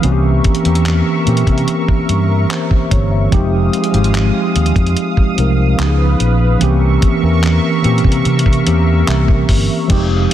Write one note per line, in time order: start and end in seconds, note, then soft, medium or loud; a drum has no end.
0.01 0.39 C2 loud
0.01 0.61 E3 loud
0.01 0.61 A#3 medium
0.01 0.62 C4 medium
0.01 0.62 C#4 loud
0.01 3.29 A#4 medium
0.01 3.29 E5 medium
0.01 3.29 C#6 medium
0.01 closed hi-hat medium
0.05 0.11 F#4 medium
0.12 0.66 G4 loud
0.44 kick medium
0.44 closed hi-hat medium
0.55 closed hi-hat medium
0.63 1.00 E2 loud
0.63 1.22 E3 medium
0.63 1.23 A#3 medium
0.63 1.24 C4 medium
0.63 1.24 C#4 medium
0.63 closed hi-hat medium
0.67 1.25 G4 medium
0.75 closed hi-hat medium
0.86 clap loud
0.86 closed hi-hat medium
1.25 1.45 A#2 medium
1.25 2.04 E3 medium
1.25 2.04 A#3 medium
1.25 2.05 C4 medium
1.25 2.05 C#4 medium
1.25 closed hi-hat medium
1.29 2.06 G4 medium
1.37 closed hi-hat medium
1.47 1.65 C3 loud
1.47 kick medium
1.47 closed hi-hat soft
1.58 closed hi-hat soft
1.68 closed hi-hat medium
1.88 kick medium
2.09 2.44 G2 medium
2.09 closed hi-hat medium
2.50 2.89 C5 medium
2.50 clap loud
2.50 closed hi-hat medium
2.71 kick medium
2.91 3.26 G1 medium
2.91 3.11 C#5 medium
2.91 kick medium
2.91 closed hi-hat medium
3.12 3.51 E5 medium
3.30 3.67 F1 loud
3.30 3.90 F3 loud
3.30 3.38 G3 medium
3.30 5.76 G#3 medium
3.30 3.91 C4 loud
3.30 3.91 D#4 medium
3.30 6.58 F5 medium
3.30 6.58 D#6 medium
3.30 kick loud
3.30 closed hi-hat medium
3.34 3.91 G#3 loud
3.34 3.92 G4 loud
3.73 closed hi-hat medium
3.84 closed hi-hat medium
3.91 4.29 G#1 medium
3.91 5.29 F3 medium
3.91 5.30 G#3 medium
3.91 5.30 C4 medium
3.91 5.31 D#4 medium
3.91 closed hi-hat medium
3.96 5.31 G4 medium
4.04 closed hi-hat medium
4.15 clap loud
4.15 closed hi-hat medium
4.56 4.73 D#2 medium
4.56 closed hi-hat medium
4.66 closed hi-hat medium
4.76 4.94 F2 medium
4.76 kick medium
4.76 closed hi-hat soft
4.87 closed hi-hat soft
4.97 closed hi-hat medium
5.17 kick medium
5.36 5.73 C2 medium
5.36 5.76 F3 medium
5.36 5.78 G#3 medium
5.36 5.79 C4 medium
5.36 5.79 D#4 medium
5.36 closed hi-hat medium
5.40 5.80 A#4 medium
5.77 6.14 C#2 loud
5.77 6.56 F3 medium
5.77 6.56 B3 medium
5.77 6.57 C#4 medium
5.77 6.57 D#4 medium
5.77 6.60 B4 medium
5.77 clap loud
5.77 closed hi-hat medium
5.81 5.86 G4 medium
5.88 6.61 G#4 medium
6.20 6.55 A#1 medium
6.20 closed hi-hat medium
6.59 6.96 C2 loud
6.59 7.18 E3 loud
6.59 7.19 A#3 loud
6.59 7.19 C4 medium
6.59 7.20 C#4 loud
6.59 9.87 A#4 medium
6.59 9.87 E5 medium
6.59 9.87 C#6 medium
6.59 closed hi-hat medium
6.63 7.21 G4 loud
7.02 kick medium
7.02 closed hi-hat medium
7.20 7.58 E2 medium
7.20 7.80 E3 medium
7.20 7.80 A#3 medium
7.20 7.81 C4 medium
7.20 7.82 C#4 medium
7.25 7.82 A#4 medium
7.43 clap loud
7.43 closed hi-hat medium
7.82 8.02 A#2 loud
7.82 8.61 E3 medium
7.82 8.62 A#3 medium
7.82 8.62 C4 medium
7.82 8.63 C#4 medium
7.82 closed hi-hat soft
7.86 8.63 G4 medium
7.98 closed hi-hat soft
8.04 8.22 C3 medium
8.04 kick medium
8.12 closed hi-hat medium
8.25 8.61 C3 loud
8.25 closed hi-hat medium
8.39 closed hi-hat medium
8.46 kick medium
8.53 closed hi-hat medium
8.64 9.02 E2 medium
8.64 9.82 E3 medium
8.64 9.83 A#3 medium
8.64 9.83 C4 medium
8.64 9.84 C#4 medium
8.64 closed hi-hat medium
8.69 9.84 G4 medium
9.07 9.43 C2 medium
9.07 9.86 E5 medium
9.07 clap loud
9.07 closed hi-hat medium
9.28 kick medium
9.49 9.66 G1 medium
9.49 kick medium
9.49 open hi-hat medium
9.88 10.25 F1 loud
9.88 10.34 F3 loud
9.88 10.34 G#3 loud
9.88 10.34 G#3 medium
9.88 10.34 C4 medium
9.88 10.34 D#4 loud
9.88 10.34 F5 medium
9.88 10.34 D#6 medium
9.88 kick loud
9.88 closed hi-hat medium
9.88 crash loud
9.92 10.34 G4 loud